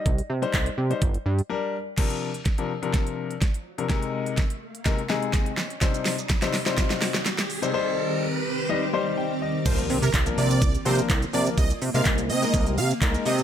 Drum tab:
CC |----------------|x---------------|----------------|----------------|
HH |xx-xxx-xxx-x----|xx-xxx-xxx-xxx-x|xx-xxx-xxx-xxx-x|xxoxxxoxxxoxxxox|
SH |----------------|----------------|----------------|xxxxxxxxxxxxxxxx|
CP |----x-----------|----------------|----------------|----------------|
SD |----------------|o---o---o---o---|o---o---o-o-o-o-|o-o-oooooooooo--|
BD |o---o---o-------|o---o---o---o---|o---o---o---o---|o---o---o-------|

CC |----------------|x---------------|----------------|
HH |----------------|xxoxxxoxxxoxxxox|xxoxxxoxxxoxxxox|
SH |----------------|xxxxxxxxxxxxxxxx|xxxxxxxxxxxxxxxx|
CP |----------------|----x-------x---|----x-------x---|
SD |----------------|----------------|----------------|
BD |----------------|o---o---o---o---|o---o---o---o---|